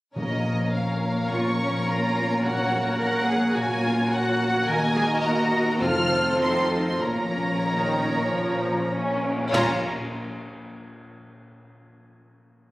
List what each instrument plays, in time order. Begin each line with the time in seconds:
0.16 double bass section A#1, timpani A#2, harp A#2, viola section A#3 C#4, violin section A#4 C#5 D#5
0.35 harp F3
0.55 harp A#3
0.75 harp C#4, violin section F5
0.93 harp A#4
1.11 harp A#3
1.31 harp A#2, cello section F4, violin section C#6
1.50 harp F3
1.60 cello section C#4
1.69 harp A#3
1.87 harp C#4, cello section F4, violin section A#5
2.06 harp A#4
2.25 harp A#3
2.43 timpani A#2, harp A#2, cello section F#4, violin section F#5
2.63 harp F#3
2.81 harp A#3
2.99 harp C#4, cello section A#4, violin section F#5
3.18 harp A#4
3.27 cello section G#4
3.37 harp A#3
3.55 harp A#2, cello section F#4, violin section G#5
3.74 harp F#3
3.84 cello section F4
3.93 harp A#3
4.11 harp C#4, cello section F#4, violin section F#5
4.31 harp A#4
4.49 harp A#3
4.67 double bass section D#2, harp D#3, viola section A#3 F#4, violin section A#4 D#5 G#5, cello section A#4
4.86 harp A#3
4.96 cello section G#4
5.05 harp D#4
5.24 harp F#4, cello section F#4, violin section A#5
5.43 harp A#4
5.62 harp D#4
5.80 timpani F2, double bass section F2, harp F3, viola section C4 F4, cello section F4, violin section A4 C5 F6
6.01 harp A3
6.21 harp C4
6.41 cello section D#4, harp F4, violin section C6
6.62 harp A4
6.82 harp C4
6.88 violin section C6
7.02 double bass section A#1, harp A#2, viola section A#3, cello section C#4, violin section A#4 C#5 A#5
7.24 harp F3
7.45 harp A#3
7.66 viola section D#3, harp C#4
7.89 harp F4
8.10 harp A#3
8.30 harp A#2, viola section F3
8.52 harp F3
8.73 harp A#3
8.93 viola section C#4, harp C#4
9.14 harp F4
9.35 harp A#3
9.52 double bass section A#1, harp A#2 A#3 C#4, cello section A#2, timpani A#2, viola section C#4 F4, violin section F4 C#5 A#5, concert bass drum, crash
9.56 harp F4 C#5